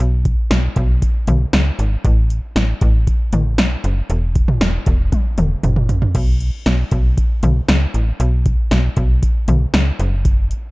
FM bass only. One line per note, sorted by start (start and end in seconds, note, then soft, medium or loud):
0.00 0.35 B1 loud
0.51 0.69 B1 loud
0.76 1.03 B1 loud
1.28 1.46 B1 loud
1.53 1.71 C#2 medium
1.79 1.97 G#1 medium
2.05 2.40 A1 loud
2.56 2.74 A1 loud
2.82 3.08 A1 loud
3.33 3.60 A1 loud
3.58 3.76 B1 medium
3.84 4.02 F#1 medium
4.10 4.46 E1 loud
4.61 4.79 E1 loud
4.87 5.14 E1 loud
5.38 5.56 E1 medium
5.63 5.91 F#1 medium
5.89 6.07 A1 medium
6.15 6.51 B1 loud
6.66 6.84 B1 loud
6.92 7.19 B1 loud
7.43 7.61 B1 loud
7.69 7.87 C#2 medium
7.94 8.12 A1 medium
8.20 8.56 B1 loud
8.71 8.89 B1 loud
8.97 9.24 B1 loud
9.48 9.66 B1 loud
9.74 9.92 C#2 medium
9.99 10.53 F#1 loud